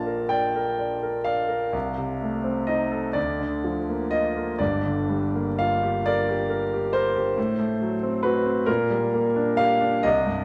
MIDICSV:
0, 0, Header, 1, 2, 480
1, 0, Start_track
1, 0, Tempo, 960000
1, 2306, Time_signature, 12, 3, 24, 8
1, 2793, Tempo, 910470
1, 3273, Tempo, 877193
1, 4713, Tempo, 918836
1, 5400, End_track
2, 0, Start_track
2, 0, Title_t, "Grand piano"
2, 0, Program_c, 0, 0
2, 0, Control_c, 0, 64, 127
2, 0, Note_on_c, 0, 34, 47
2, 0, Note_on_c, 0, 46, 50
2, 0, Note_on_c, 0, 53, 39
2, 0, Note_on_c, 0, 58, 40
2, 0, Note_on_c, 0, 62, 37
2, 0, Note_on_c, 0, 65, 41
2, 0, Note_on_c, 0, 77, 67
2, 0, Note_on_c, 0, 81, 73
2, 32, Note_on_c, 0, 70, 40
2, 110, Note_off_c, 0, 65, 0
2, 145, Note_on_c, 0, 79, 75
2, 154, Note_on_c, 0, 74, 52
2, 156, Note_off_c, 0, 81, 0
2, 233, Note_off_c, 0, 70, 0
2, 277, Note_on_c, 0, 70, 42
2, 352, Note_off_c, 0, 74, 0
2, 393, Note_on_c, 0, 74, 45
2, 470, Note_off_c, 0, 70, 0
2, 514, Note_on_c, 0, 70, 42
2, 585, Note_off_c, 0, 74, 0
2, 622, Note_off_c, 0, 77, 0
2, 622, Note_on_c, 0, 77, 79
2, 628, Note_off_c, 0, 79, 0
2, 628, Note_on_c, 0, 74, 49
2, 703, Note_off_c, 0, 70, 0
2, 743, Note_on_c, 0, 70, 43
2, 818, Note_off_c, 0, 74, 0
2, 837, Note_off_c, 0, 46, 0
2, 842, Note_off_c, 0, 34, 0
2, 864, Note_off_c, 0, 70, 0
2, 864, Note_on_c, 0, 36, 52
2, 879, Control_c, 0, 64, 0
2, 882, Note_off_c, 0, 58, 0
2, 882, Note_off_c, 0, 62, 0
2, 884, Note_off_c, 0, 53, 0
2, 958, Control_c, 0, 64, 127
2, 987, Note_on_c, 0, 48, 40
2, 1108, Note_on_c, 0, 57, 43
2, 1178, Note_off_c, 0, 48, 0
2, 1220, Note_on_c, 0, 60, 46
2, 1298, Note_off_c, 0, 57, 0
2, 1335, Note_on_c, 0, 75, 73
2, 1337, Note_off_c, 0, 77, 0
2, 1343, Note_on_c, 0, 63, 40
2, 1412, Note_off_c, 0, 60, 0
2, 1457, Note_on_c, 0, 69, 47
2, 1533, Note_off_c, 0, 63, 0
2, 1558, Note_off_c, 0, 36, 0
2, 1566, Note_on_c, 0, 74, 76
2, 1574, Note_on_c, 0, 38, 53
2, 1577, Note_off_c, 0, 75, 0
2, 1578, Note_off_c, 0, 69, 0
2, 1590, Control_c, 0, 64, 0
2, 1699, Control_c, 0, 64, 127
2, 1699, Note_on_c, 0, 50, 40
2, 1822, Note_on_c, 0, 53, 41
2, 1894, Note_off_c, 0, 50, 0
2, 1944, Note_on_c, 0, 58, 45
2, 2016, Note_off_c, 0, 53, 0
2, 2054, Note_on_c, 0, 75, 82
2, 2057, Note_off_c, 0, 74, 0
2, 2061, Note_on_c, 0, 65, 50
2, 2137, Note_off_c, 0, 58, 0
2, 2183, Note_on_c, 0, 58, 42
2, 2256, Note_off_c, 0, 65, 0
2, 2282, Note_off_c, 0, 38, 0
2, 2293, Note_on_c, 0, 74, 71
2, 2296, Note_on_c, 0, 31, 53
2, 2300, Note_off_c, 0, 75, 0
2, 2300, Note_on_c, 0, 43, 57
2, 2305, Note_off_c, 0, 58, 0
2, 2314, Control_c, 0, 64, 0
2, 2393, Control_c, 0, 64, 127
2, 2426, Note_on_c, 0, 50, 46
2, 2546, Note_on_c, 0, 55, 45
2, 2622, Note_off_c, 0, 50, 0
2, 2674, Note_on_c, 0, 58, 43
2, 2741, Note_off_c, 0, 55, 0
2, 2785, Note_off_c, 0, 74, 0
2, 2793, Note_on_c, 0, 77, 81
2, 2802, Note_on_c, 0, 65, 43
2, 2868, Note_off_c, 0, 58, 0
2, 2923, Note_on_c, 0, 67, 46
2, 2994, Note_off_c, 0, 65, 0
2, 3037, Note_off_c, 0, 77, 0
2, 3042, Note_on_c, 0, 74, 92
2, 3049, Note_on_c, 0, 70, 54
2, 3112, Note_off_c, 0, 67, 0
2, 3165, Note_on_c, 0, 67, 54
2, 3231, Note_off_c, 0, 70, 0
2, 3273, Note_on_c, 0, 70, 52
2, 3348, Note_off_c, 0, 67, 0
2, 3407, Note_on_c, 0, 67, 46
2, 3464, Note_off_c, 0, 70, 0
2, 3510, Note_on_c, 0, 72, 90
2, 3514, Note_off_c, 0, 74, 0
2, 3519, Note_on_c, 0, 70, 53
2, 3591, Note_off_c, 0, 67, 0
2, 3635, Note_on_c, 0, 67, 50
2, 3706, Note_off_c, 0, 70, 0
2, 3723, Note_off_c, 0, 31, 0
2, 3725, Note_off_c, 0, 43, 0
2, 3752, Note_off_c, 0, 67, 0
2, 3754, Note_on_c, 0, 45, 66
2, 3761, Control_c, 0, 64, 0
2, 3837, Control_c, 0, 64, 127
2, 3873, Note_on_c, 0, 57, 50
2, 3994, Note_on_c, 0, 54, 44
2, 4062, Note_off_c, 0, 57, 0
2, 4112, Note_on_c, 0, 60, 50
2, 4183, Note_off_c, 0, 54, 0
2, 4220, Note_on_c, 0, 71, 79
2, 4227, Note_off_c, 0, 72, 0
2, 4230, Note_on_c, 0, 66, 54
2, 4302, Note_off_c, 0, 60, 0
2, 4346, Note_on_c, 0, 60, 54
2, 4421, Note_off_c, 0, 66, 0
2, 4448, Note_off_c, 0, 45, 0
2, 4459, Note_on_c, 0, 70, 86
2, 4464, Note_off_c, 0, 71, 0
2, 4466, Note_on_c, 0, 46, 67
2, 4467, Note_off_c, 0, 60, 0
2, 4476, Control_c, 0, 64, 0
2, 4565, Control_c, 0, 64, 127
2, 4589, Note_on_c, 0, 55, 49
2, 4719, Note_on_c, 0, 58, 51
2, 4783, Note_off_c, 0, 55, 0
2, 4834, Note_on_c, 0, 62, 55
2, 4906, Note_off_c, 0, 58, 0
2, 4944, Note_on_c, 0, 77, 102
2, 4947, Note_off_c, 0, 70, 0
2, 4952, Note_on_c, 0, 67, 55
2, 5026, Note_off_c, 0, 62, 0
2, 5068, Note_on_c, 0, 62, 49
2, 5145, Note_off_c, 0, 67, 0
2, 5171, Note_off_c, 0, 46, 0
2, 5184, Note_on_c, 0, 75, 94
2, 5190, Note_off_c, 0, 77, 0
2, 5191, Note_off_c, 0, 62, 0
2, 5191, Note_on_c, 0, 36, 68
2, 5201, Control_c, 0, 64, 0
2, 5307, Note_on_c, 0, 43, 54
2, 5311, Control_c, 0, 64, 127
2, 5400, Note_off_c, 0, 36, 0
2, 5400, Note_off_c, 0, 43, 0
2, 5400, Note_off_c, 0, 75, 0
2, 5400, End_track
0, 0, End_of_file